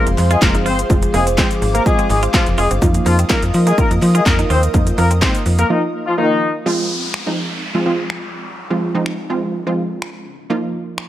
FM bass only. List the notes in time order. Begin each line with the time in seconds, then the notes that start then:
0.07 F1
0.18 F2
0.42 F1
0.66 G1
0.90 F1
1.14 F1
1.62 G#1
2.10 G#1
2.47 F1
2.58 F1
2.71 G1
2.82 F2
3.06 F2
3.43 F2
3.54 F3
3.91 F2
4.02 F3
4.26 F2
4.50 D#2
4.74 F2
4.98 F2
5.46 F2